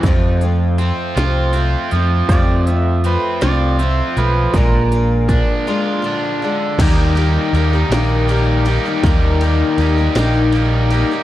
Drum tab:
CC |------|------|------|x-----|
RD |------|------|------|xxxxxx|
HH |xxxxxx|xxxxxx|xxx---|------|
SD |---o--|---o--|------|---o--|
BD |o-----|o-----|o-o---|o-----|

CC |------|
RD |xxxxxx|
HH |------|
SD |---o--|
BD |o-----|